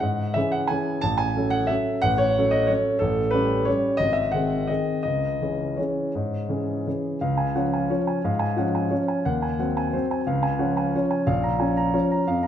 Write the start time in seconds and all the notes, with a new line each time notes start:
0.00 G#2 F#5
0.34 E3 C#4 G#4 E5
0.52 F#5
0.67 E3 C#4 G#4 G#5
1.01 A1 A5
1.18 G#5
1.35 F#3 C#4 A4
1.50 F#5
1.67 F#3 C#4 A4 E5
2.02 A1 F#5
2.18 C#5
2.38 F#3 C#4 A4
2.51 D#5
2.67 F#3 C#4 A4 C#5
2.99 A1 A4
3.31 G3 C#4 G4 B4
3.65 G3 C#4 G4 C#5
3.97 G#1 D#5
4.13 E5
4.31 D#3 C4 G#4 F#5
4.67 D#3 C4 G#4 D#5
5.03 C#2 D#5
5.41 E3 C#4 G#4
5.77 E3 C#4 G#4 C#5
6.15 G#2
6.49 E3 C#4 G#4
6.87 E3 C#4 G#4
7.21 C#2 F5
7.37 G#5
7.55 F3 C#4 F#5
7.73 G#5
7.90 F3 C#4 C#5
8.07 G#5
8.24 G#2 F5
8.39 G#5
8.56 F3 C#4 F#5
8.75 G#5
8.91 F3 C#4 C#5
9.08 G#5
9.25 D#2 F#5
9.42 G#5
9.59 F#3 C4 F#5
9.77 G#5
9.93 F#3 C4 C5
10.11 G#5
10.27 C#2 F5
10.43 G#5
10.59 F3 C#4 F#5
10.77 G#5
10.95 F3 C#4 C#5
11.11 G#5
11.27 A#1 F5
11.43 A#5
11.59 F3 C#4 G#5
11.77 A#5
11.93 F3 C#4 C#5
12.11 A#5
12.27 F2 F5
12.43 A#5